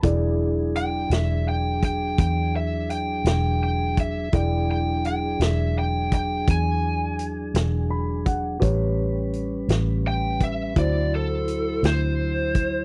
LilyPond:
<<
  \new Staff \with { instrumentName = "Lead electric guitar" } { \time 12/8 \key e \dorian \tempo 4. = 56 r4 g''8 e''8 g''8 g''8 g''8 e''8 g''8 g''8 g''8 e''8 | g''8 g''8 g''8 e''8 g''8 g''8 gis''2. | r2 g''8 e''8 d''8 a'4 c''4. | }
  \new Staff \with { instrumentName = "Grand piano" } { \time 12/8 \key e \dorian << { r1. | r1 r4 b''8 fis''8 | r1. | } \\ { <e' gis' d''>1. | <e' gis' d''>1. | <g' b' cis''>2. <e' fis' c''>2. | } >> }
  \new Staff \with { instrumentName = "Tonewheel organ" } { \time 12/8 \key e \dorian <fis d' gis'>1. | <fis d' gis'>1. | <g cis' b'>2. <fis e' c''>2. | }
  \new Staff \with { instrumentName = "Fingered electric bass" } { \clef bass \time 12/8 \key e \dorian e,,4. e,,4. e,4. e,,4. | e,,4. e,,4. e,4. e,,4. | a,,4. a,,4. d,4. d,4. | }
  \new DrumStaff \with { instrumentName = "Drums" } \drummode { \time 12/8 <hh bd>4 hh8 <hh sn>4 <hh bd>8 <hh bd>4 hh8 <hh sn>4 <hh bd>8 | <hh bd>4 hh8 <hh sn>4 <hh bd>8 <hh bd>4 hh8 <hh sn>4 <hh bd>8 | <hh bd>4 hh8 <hh sn>4 <hh bd>8 <hh bd>4 hh8 <hh sn>4 <hh bd>8 | }
>>